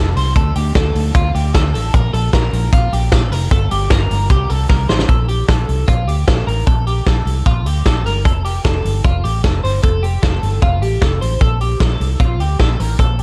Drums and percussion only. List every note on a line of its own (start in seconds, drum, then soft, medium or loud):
0.17 open hi-hat medium
0.36 kick loud
0.36 hi-hat pedal medium
0.36 ride medium
0.55 open hi-hat medium
0.75 kick loud
0.75 snare loud
0.75 hi-hat pedal medium
0.75 ride medium
0.95 open hi-hat medium
1.15 kick loud
1.15 hi-hat pedal medium
1.15 ride medium
1.35 open hi-hat medium
1.54 kick loud
1.54 snare loud
1.54 hi-hat pedal medium
1.54 ride medium
1.75 open hi-hat medium
1.94 kick loud
1.94 hi-hat pedal medium
1.94 ride medium
2.14 open hi-hat medium
2.33 kick loud
2.33 snare loud
2.33 hi-hat pedal medium
2.33 ride medium
2.53 open hi-hat medium
2.73 kick loud
2.73 hi-hat pedal medium
2.73 ride medium
2.93 open hi-hat medium
3.12 kick loud
3.12 snare loud
3.12 hi-hat pedal medium
3.12 ride medium
3.32 open hi-hat medium
3.51 kick loud
3.51 hi-hat pedal medium
3.51 ride medium
3.71 open hi-hat medium
3.90 kick loud
3.90 snare loud
3.90 hi-hat pedal medium
3.90 ride medium
4.11 open hi-hat medium
4.30 kick loud
4.30 hi-hat pedal medium
4.30 ride medium
4.50 open hi-hat medium
4.69 kick loud
4.69 snare medium
4.89 snare loud
4.99 snare loud
5.09 kick loud
5.09 closed hi-hat medium
5.29 open hi-hat medium
5.49 kick loud
5.49 snare loud
5.49 closed hi-hat medium
5.69 open hi-hat medium
5.88 kick loud
5.88 closed hi-hat medium
6.08 open hi-hat medium
6.28 kick loud
6.28 snare loud
6.28 closed hi-hat medium
6.48 open hi-hat medium
6.67 kick loud
6.67 closed hi-hat medium
6.87 open hi-hat medium
7.06 kick loud
7.06 snare medium
7.06 closed hi-hat medium
7.27 open hi-hat medium
7.46 kick loud
7.46 closed hi-hat medium
7.66 open hi-hat medium
7.86 kick medium
7.86 snare loud
7.86 closed hi-hat medium
8.06 open hi-hat medium
8.25 kick loud
8.25 closed hi-hat medium
8.45 open hi-hat medium
8.65 kick loud
8.65 snare loud
8.65 closed hi-hat medium
8.85 open hi-hat medium
9.05 kick loud
9.05 closed hi-hat medium
9.25 open hi-hat medium
9.44 kick loud
9.44 snare medium
9.44 closed hi-hat medium
9.65 open hi-hat medium
9.84 kick loud
9.84 closed hi-hat medium
10.04 open hi-hat medium
10.23 kick loud
10.23 snare loud
10.23 closed hi-hat medium
10.43 open hi-hat medium
10.62 kick loud
10.62 closed hi-hat medium
10.82 open hi-hat medium
11.02 kick loud
11.02 snare medium
11.02 closed hi-hat medium
11.22 open hi-hat medium
11.41 kick loud
11.41 closed hi-hat medium
11.61 open hi-hat medium
11.80 kick loud
11.80 snare loud
11.80 closed hi-hat medium
12.01 open hi-hat medium
12.20 kick loud
12.20 closed hi-hat medium
12.40 open hi-hat medium
12.59 kick medium
12.59 snare loud
12.59 closed hi-hat medium
12.80 open hi-hat medium
12.99 kick loud
12.99 closed hi-hat medium
13.19 open hi-hat medium